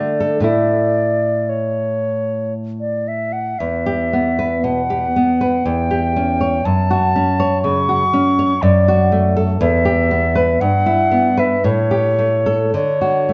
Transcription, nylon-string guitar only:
0.00 0.43 D3 soft
0.00 0.36 A3 soft
0.20 0.43 A4 soft
0.40 3.53 A2 soft
0.40 3.54 A3 soft
0.40 3.55 E4 soft
3.60 5.61 E2 soft
3.86 4.29 G4 soft
4.13 4.55 B3 soft
4.39 4.80 B4 soft
4.64 5.05 B2 soft
4.90 5.30 G4 soft
5.16 5.56 B3 soft
5.41 5.66 B4 soft
5.66 6.62 E2 soft
5.91 6.30 G4 soft
6.16 6.56 C#4 soft
6.41 6.65 C#5 soft
6.65 8.58 F#2 soft
6.91 7.30 F#4 soft
7.16 7.54 C#4 soft
7.40 7.78 C#5 soft
7.64 8.03 C#3 soft
7.89 8.27 F#4 soft
8.13 8.52 C#4 soft
8.39 8.63 C#5 soft
8.63 9.59 F#2 medium
8.88 9.27 F#4 soft
9.12 9.51 A3 soft
9.36 9.61 A4 soft
9.61 10.58 E2 medium
9.85 10.25 G4 soft
10.11 10.51 B3 soft
10.35 10.61 B4 soft
10.61 11.63 G2 medium
10.86 11.28 E4 soft
11.11 11.54 B3 soft
11.37 11.65 B4 soft
11.64 12.71 A2 medium
11.91 12.36 G4 soft
12.19 12.63 A3 soft
12.46 12.74 A4 soft
12.74 13.33 D3 soft
13.01 13.33 F#4 soft
13.29 13.33 A3 soft

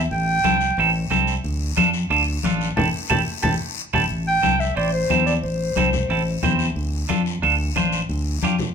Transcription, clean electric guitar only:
0.44 0.56 C4 medium
0.44 0.56 E4 medium
0.44 0.57 A4 medium
0.78 0.90 C4 medium
0.78 0.90 E4 medium
0.78 0.90 A4 medium
1.11 1.34 C4 medium
1.11 1.34 E4 medium
1.11 1.35 A4 medium
1.77 1.89 D4 medium
1.77 1.89 F4 medium
1.77 1.89 A4 medium
2.10 2.22 D4 medium
2.10 2.22 F4 medium
2.10 2.23 A4 medium
2.44 2.68 D4 medium
2.44 2.68 F4 medium
2.44 2.68 A4 medium
2.77 2.88 E4 medium
2.77 2.88 G4 medium
2.77 2.88 A4 medium
3.10 3.21 E4 medium
3.10 3.21 G4 loud
3.10 3.21 A4 medium
3.43 3.54 E4 medium
3.43 3.54 G4 medium
3.43 3.54 A4 medium
3.93 4.04 E4 medium
3.93 4.04 G4 medium
3.93 4.04 A4 medium
4.43 4.55 C4 medium
4.43 4.55 E4 medium
4.43 4.55 A4 medium
4.76 4.88 C4 medium
4.76 4.89 E4 medium
4.76 4.89 C5 medium
5.10 5.33 C4 medium
5.10 5.34 E4 medium
5.10 5.34 A4 medium
5.77 5.89 C4 medium
5.77 5.89 E4 medium
5.77 5.89 A4 medium
6.10 6.22 C4 medium
6.10 6.22 E4 medium
6.10 6.22 A4 medium
6.43 6.66 C4 medium
6.43 6.67 E4 medium
6.43 6.67 C5 medium
7.09 7.21 D4 medium
7.09 7.21 F4 medium
7.09 7.21 A4 medium
7.42 7.54 D4 medium
7.42 7.55 F4 medium
7.42 7.55 A4 medium
7.76 7.99 D4 medium
7.76 8.00 F4 medium
7.76 8.00 C5 medium
8.43 8.55 D4 medium
8.43 8.55 F4 medium
8.43 8.55 G4 medium

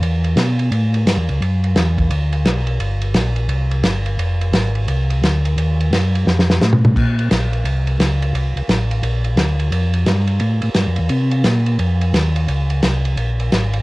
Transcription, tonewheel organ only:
0.01 0.36 E2 medium
0.36 0.71 B2 medium
0.71 1.06 A2 medium
1.06 1.18 G2 medium
1.17 1.30 E2 medium
1.29 1.41 C#2 medium
1.41 1.75 F#2 medium
1.76 2.10 E2 medium
2.11 2.45 D2 medium
2.46 2.80 B1 medium
2.80 3.14 G1 medium
3.14 3.48 A#1 medium
3.48 3.83 C2 medium
3.83 4.17 G1 medium
4.18 4.52 F1 medium
4.53 4.87 G#1 medium
4.88 5.22 C2 medium
5.22 5.56 D2 medium
5.57 5.91 D#2 medium
5.91 6.25 F#2 medium
6.26 6.60 F2 medium
6.61 6.95 A2 medium
6.96 7.29 A#2 medium
7.31 7.64 A#1 medium
7.64 7.98 C2 medium
7.99 8.33 C#2 medium
8.33 8.54 C2 medium
8.56 8.62 C2 soft
8.68 9.02 A1 medium
9.03 9.36 A#1 medium
9.36 9.70 D2 medium
9.71 10.05 F2 medium
10.06 10.40 G2 medium
10.41 10.61 A2 medium
10.63 10.70 A2 soft
10.75 10.87 G2 medium
10.87 10.99 F2 medium
10.98 11.09 E2 medium
11.10 11.44 C3 medium
11.44 11.78 A#2 medium
11.79 12.13 F2 medium
12.14 12.47 D#2 medium
12.48 12.82 C#2 medium
12.83 13.17 C2 medium
13.16 13.51 A#1 medium
13.52 13.82 G#1 medium

